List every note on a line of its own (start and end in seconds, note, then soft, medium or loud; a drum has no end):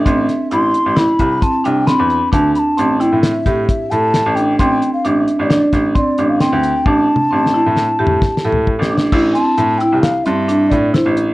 0.00 0.52 E5 medium
0.05 0.24 A1 medium
0.05 0.40 C4 medium
0.05 kick medium
0.05 closed hi-hat medium
0.29 snare soft
0.29 closed hi-hat soft
0.51 0.69 A1 medium
0.51 0.86 E4 medium
0.51 0.99 C6 medium
0.51 closed hi-hat medium
0.74 closed hi-hat medium
0.86 1.03 A1 medium
0.96 1.31 E4 medium
0.96 1.44 B5 medium
0.96 snare medium
0.96 closed hi-hat medium
1.19 1.37 C2 medium
1.19 kick medium
1.19 closed hi-hat medium
1.42 1.59 C4 medium
1.42 1.66 A5 medium
1.42 kick medium
1.42 closed hi-hat medium
1.64 1.92 C2 medium
1.64 1.82 D4 medium
1.64 1.88 G5 medium
1.64 closed hi-hat soft
1.87 2.22 C4 medium
1.87 2.32 B5 medium
1.87 snare medium
1.87 closed hi-hat medium
1.99 2.17 E2 medium
2.10 closed hi-hat medium
2.32 2.51 D2 medium
2.32 2.67 D4 medium
2.32 2.54 A5 medium
2.32 kick medium
2.32 closed hi-hat medium
2.55 3.02 A5 medium
2.55 2.60 B5 medium
2.55 closed hi-hat medium
2.77 3.05 A1 medium
2.77 2.95 C4 medium
2.77 closed hi-hat medium
3.00 3.35 E4 medium
3.00 3.22 G5 medium
3.00 closed hi-hat medium
3.12 3.30 A2 medium
3.23 3.65 E5 medium
3.23 snare medium
3.23 closed hi-hat medium
3.46 3.64 A2 medium
3.46 3.81 G4 medium
3.46 kick medium
3.46 closed hi-hat soft
3.69 3.92 E5 medium
3.69 kick medium
3.69 closed hi-hat medium
3.91 4.18 A2 medium
3.91 4.26 A4 soft
3.91 4.37 A5 medium
3.91 closed hi-hat medium
4.14 snare medium
4.14 closed hi-hat medium
4.26 4.52 A1 medium
4.35 4.54 D4 medium
4.35 4.58 G5 medium
4.35 closed hi-hat medium
4.59 4.77 A1 medium
4.59 4.94 C4 medium
4.59 4.91 G5 medium
4.59 kick medium
4.59 closed hi-hat medium
4.82 closed hi-hat soft
4.94 5.07 F5 medium
5.05 5.23 A1 medium
5.05 5.39 D4 medium
5.05 5.38 E5 medium
5.05 closed hi-hat medium
5.28 closed hi-hat medium
5.38 5.57 A1 medium
5.38 5.70 D5 medium
5.38 5.43 E5 medium
5.50 5.85 D4 medium
5.50 snare medium
5.50 closed hi-hat medium
5.73 5.90 A1 medium
5.73 kick medium
5.73 snare soft
5.73 closed hi-hat soft
5.95 6.12 C4 medium
5.95 6.31 D5 medium
5.95 kick medium
5.95 closed hi-hat medium
6.18 6.45 A1 medium
6.18 6.36 D4 medium
6.18 closed hi-hat soft
6.29 6.42 F5 medium
6.40 6.76 C4 medium
6.40 6.88 G5 medium
6.40 snare medium
6.40 closed hi-hat medium
6.53 6.70 D2 medium
6.63 closed hi-hat medium
6.86 7.04 A1 medium
6.86 7.21 D4 medium
6.86 8.68 A5 medium
6.86 kick medium
7.16 high tom soft
7.31 7.59 A1 medium
7.31 7.48 C4 medium
7.46 snare medium
7.54 7.89 E4 medium
7.66 7.84 A2 medium
7.77 snare medium
7.99 8.17 A2 medium
7.99 8.34 G4 medium
8.07 mid tom medium
8.22 kick medium
8.22 snare medium
8.37 snare medium
8.45 8.72 A2 medium
8.45 8.79 A4 soft
8.53 floor tom medium
8.67 kick medium
8.79 9.06 A1 medium
8.79 snare medium
8.91 9.08 D4 medium
8.98 snare medium
9.12 9.31 A1 medium
9.12 9.30 E4 medium
9.12 kick medium
9.12 crash medium
9.34 9.70 C4 medium
9.34 9.80 A5 medium
9.34 closed hi-hat medium
9.58 9.76 A2 medium
9.58 closed hi-hat medium
9.78 10.16 E4 medium
9.78 10.02 G5 medium
9.78 closed hi-hat medium
9.92 10.10 C2 medium
10.02 10.25 F5 medium
10.02 snare medium
10.02 closed hi-hat medium
10.24 10.71 G2 medium
10.24 10.43 C4 medium
10.24 10.71 E5 medium
10.24 closed hi-hat medium
10.48 10.83 D4 medium
10.48 closed hi-hat medium
10.70 10.89 A2 medium
10.70 10.93 D5 medium
10.70 kick medium
10.70 closed hi-hat medium
10.94 11.28 E4 medium
10.94 11.15 C5 medium
10.94 snare medium
10.94 closed hi-hat medium
11.05 11.32 A1 medium
11.17 closed hi-hat medium